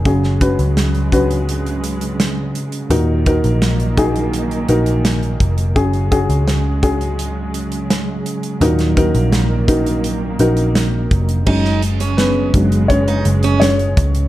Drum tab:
CC |----------------|----------------|----------------|----------------|
HH |x-xxxxxxxxxxx-xx|x-xxxxxxxxxxxxxx|xxxxx-xxx-xxx-xx|xxxxx-xxx-xxx-xx|
SD |-o--o-------o---|----o-------o---|----o-------o---|-o--o-------o---|
BD |o-o---o---------|--o---o-------o-|o-o---o---------|--o---o-------o-|

CC |x---------------|
HH |--xxx-xxxxxxxxxx|
SD |-o--o-------o---|
BD |o-----o-o-----o-|